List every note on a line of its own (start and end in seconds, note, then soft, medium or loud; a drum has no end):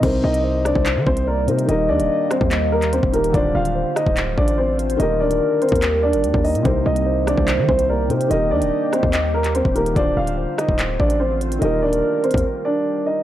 0.00 0.23 C2 loud
0.00 1.44 C3 medium
0.00 1.67 C3 medium
0.00 3.31 G3 medium
0.00 3.31 A#3 medium
0.00 1.45 C4 medium
0.00 0.22 C4 medium
0.00 1.67 D#4 medium
0.00 1.46 D#4 medium
0.00 0.22 C5 medium
0.00 kick loud
0.00 closed hi-hat medium
0.00 crash loud
0.06 1.46 A#4 medium
0.24 0.73 C2 loud
0.24 0.63 D#4 medium
0.24 0.44 D#5 medium
0.24 0.63 D#5 medium
0.34 closed hi-hat medium
0.44 1.23 C5 loud
0.65 0.84 D4 medium
0.65 0.84 D5 medium
0.65 cross-stick medium
0.65 closed hi-hat medium
0.75 0.98 C2 loud
0.75 kick loud
0.86 clap loud
0.86 closed hi-hat medium
0.96 1.06 D#3 loud
1.07 1.49 C2 loud
1.07 1.26 C4 medium
1.07 1.25 C5 loud
1.07 kick loud
1.17 closed hi-hat medium
1.27 1.67 A#3 medium
1.27 1.66 A#4 medium
1.27 1.47 D5 medium
1.47 1.68 C3 medium
1.47 1.68 C3 loud
1.47 1.68 C4 soft
1.47 1.69 D#4 soft
1.47 1.69 A#4 medium
1.47 1.68 C5 medium
1.47 closed hi-hat medium
1.59 closed hi-hat medium
1.66 1.91 D#1 loud
1.66 3.09 D#3 medium
1.66 3.32 D#3 medium
1.66 3.10 A#3 medium
1.66 1.88 D#4 medium
1.66 3.32 G4 medium
1.66 3.11 G4 medium
1.66 1.87 D#5 medium
1.66 2.47 D#5 loud
1.66 closed hi-hat medium
1.71 3.12 A#4 medium
1.89 2.01 D#2 loud
1.89 2.28 D4 medium
1.89 2.28 D5 medium
2.00 2.09 D#1 loud
2.00 closed hi-hat medium
2.31 2.50 C4 medium
2.31 2.49 C5 medium
2.31 cross-stick loud
2.31 closed hi-hat medium
2.41 3.01 D#2 loud
2.41 kick loud
2.51 2.90 D#5 medium
2.51 clap loud
2.51 closed hi-hat medium
2.72 2.91 A#3 medium
2.72 2.91 A#4 medium
2.82 clap medium
2.82 closed hi-hat medium
2.93 3.12 C4 medium
2.93 3.12 C5 medium
2.93 closed hi-hat medium
3.03 3.33 D#1 loud
3.03 kick medium
3.12 3.33 D#3 medium
3.12 3.33 A#3 medium
3.12 3.34 D#4 soft
3.12 3.34 G4 soft
3.12 3.32 A#4 medium
3.12 3.35 A#4 medium
3.12 closed hi-hat medium
3.24 closed hi-hat medium
3.31 3.54 D1 loud
3.31 4.95 D3 medium
3.31 4.98 D3 medium
3.31 4.98 A3 medium
3.31 4.98 C4 medium
3.31 4.96 D4 medium
3.31 3.53 D4 medium
3.31 4.98 F4 medium
3.31 4.97 F4 medium
3.31 3.53 D5 loud
3.31 kick loud
3.31 closed hi-hat medium
3.37 4.98 C5 medium
3.55 3.85 D1 loud
3.55 3.94 F4 medium
3.55 3.74 F5 medium
3.55 3.94 F5 medium
3.65 closed hi-hat medium
3.75 4.54 C5 medium
3.96 4.15 D#4 medium
3.96 4.15 D#5 medium
3.96 cross-stick loud
3.96 closed hi-hat medium
4.06 4.36 D1 loud
4.06 kick loud
4.17 clap loud
4.17 closed hi-hat medium
4.38 4.97 A1 loud
4.38 4.57 D4 medium
4.38 4.56 D5 medium
4.38 kick loud
4.48 closed hi-hat medium
4.58 4.97 C4 medium
4.58 4.97 C5 medium
4.58 4.78 D5 medium
4.79 4.99 C5 medium
4.79 closed hi-hat medium
4.90 closed hi-hat medium
4.97 5.22 D#1 loud
4.97 6.60 D#3 medium
4.97 9.92 D#3 medium
4.97 6.63 G3 medium
4.97 6.61 A#3 medium
4.97 8.27 A#3 medium
4.97 5.19 D#4 medium
4.97 6.64 G4 medium
4.97 6.62 G4 medium
4.97 6.61 A#4 loud
4.97 5.18 D#5 medium
4.97 closed hi-hat medium
5.02 6.63 A#4 medium
5.20 5.32 D1 loud
5.20 5.60 D4 medium
5.20 5.59 D5 medium
5.31 5.41 D#1 loud
5.31 closed hi-hat medium
5.62 5.81 C4 medium
5.62 5.81 C5 medium
5.62 closed hi-hat soft
5.69 6.15 D#2 loud
5.69 kick loud
5.69 closed hi-hat medium
5.76 closed hi-hat medium
5.82 clap loud
5.82 closed hi-hat medium
6.03 6.42 D4 medium
6.03 6.42 D5 medium
6.13 6.25 G1 loud
6.13 closed hi-hat medium
6.24 6.34 D#2 loud
6.24 closed hi-hat medium
6.34 6.56 D#2 loud
6.34 kick loud
6.44 6.63 D#4 medium
6.44 6.63 D#5 medium
6.44 open hi-hat medium
6.55 6.65 A#2 loud
6.55 closed hi-hat medium
6.63 6.85 C2 loud
6.63 8.06 C3 medium
6.63 8.07 C4 medium
6.63 8.29 C4 medium
6.63 6.84 C4 medium
6.63 8.08 D#4 medium
6.63 9.93 G4 medium
6.63 6.84 C5 medium
6.63 kick loud
6.63 closed hi-hat medium
6.68 8.09 A#4 medium
6.86 7.36 C2 loud
6.86 7.25 D#4 medium
6.86 7.25 D#5 medium
6.86 7.06 D#5 medium
6.96 closed hi-hat medium
7.06 7.85 C5 loud
7.27 7.47 D4 medium
7.27 7.46 D5 medium
7.27 cross-stick loud
7.27 closed hi-hat medium
7.38 7.60 C2 loud
7.38 kick loud
7.48 clap loud
7.48 closed hi-hat medium
7.58 7.68 D#3 loud
7.69 8.12 C2 loud
7.69 7.88 C4 medium
7.69 7.87 C5 loud
7.69 kick loud
7.79 closed hi-hat medium
7.89 8.29 A#3 medium
7.89 8.28 A#4 medium
7.89 8.09 D5 medium
8.09 8.30 C3 medium
8.09 8.30 C3 loud
8.09 8.30 C4 soft
8.09 8.31 D#4 soft
8.09 8.31 A#4 medium
8.09 8.30 C5 medium
8.09 closed hi-hat medium
8.21 closed hi-hat medium
8.28 8.53 D#1 loud
8.28 9.71 D#3 medium
8.28 9.95 G3 medium
8.28 9.72 A#3 medium
8.28 9.94 A#3 medium
8.28 8.50 D#4 medium
8.28 9.73 G4 medium
8.28 8.49 D#5 medium
8.28 9.10 D#5 loud
8.28 closed hi-hat medium
8.33 9.74 A#4 medium
8.51 8.63 D#2 loud
8.51 8.90 D4 medium
8.51 8.90 D5 medium
8.62 8.72 D#1 loud
8.62 closed hi-hat medium
8.93 9.12 C4 medium
8.93 9.12 C5 medium
8.93 cross-stick medium
8.93 closed hi-hat medium
9.03 9.63 D#2 loud
9.03 kick loud
9.13 9.52 D#5 medium
9.13 clap loud
9.13 closed hi-hat medium
9.34 9.53 A#3 medium
9.34 9.53 A#4 medium
9.44 clap medium
9.44 closed hi-hat medium
9.55 9.74 C4 medium
9.55 9.74 C5 medium
9.55 closed hi-hat medium
9.65 9.95 D#1 loud
9.65 kick medium
9.74 9.95 D#3 soft
9.74 9.95 A#3 medium
9.74 9.96 D#4 soft
9.74 9.96 G4 soft
9.74 9.94 A#4 medium
9.74 9.97 A#4 medium
9.74 closed hi-hat medium
9.86 closed hi-hat medium
9.93 10.16 D1 loud
9.93 11.57 D3 medium
9.93 11.60 D3 medium
9.93 11.60 A3 medium
9.93 11.60 C4 medium
9.93 11.58 D4 medium
9.93 10.16 D4 medium
9.93 11.60 F4 medium
9.93 11.59 F4 medium
9.93 10.15 D5 loud
9.93 kick loud
9.93 closed hi-hat medium
9.99 11.60 C5 medium
10.17 10.47 D1 loud
10.17 10.56 F4 medium
10.17 10.56 F5 medium
10.17 10.37 F5 medium
10.27 closed hi-hat medium
10.37 11.16 C5 medium
10.58 10.77 D#4 medium
10.58 10.77 D#5 medium
10.58 cross-stick loud
10.58 closed hi-hat medium
10.69 10.98 D1 loud
10.69 kick medium
10.79 clap loud
10.79 closed hi-hat medium
11.00 11.59 A1 loud
11.00 11.19 D4 medium
11.00 11.18 D5 medium
11.00 kick loud
11.10 closed hi-hat medium
11.20 11.59 C4 medium
11.20 11.59 C5 medium
11.20 11.40 D5 medium
11.41 11.61 C5 medium
11.41 closed hi-hat medium
11.52 closed hi-hat medium
11.59 11.84 D#1 loud
11.59 13.23 D#3 medium
11.59 13.23 G3 medium
11.59 13.23 A#3 medium
11.59 11.81 D#4 medium
11.59 13.23 G4 medium
11.59 13.23 A#4 loud
11.59 11.80 D#5 medium
11.59 closed hi-hat medium
11.65 13.23 A#4 medium
11.82 11.94 D1 loud
11.82 12.22 D4 medium
11.82 12.21 D5 medium
11.93 12.03 D#1 loud
11.93 closed hi-hat medium
12.24 12.43 C4 medium
12.24 12.43 C5 medium
12.24 closed hi-hat soft
12.31 12.44 D#2 loud
12.31 kick loud
12.31 closed hi-hat medium
12.38 closed hi-hat medium
12.65 13.04 D4 medium
12.65 13.04 D5 medium
13.06 13.23 D#4 medium
13.06 13.23 D#5 medium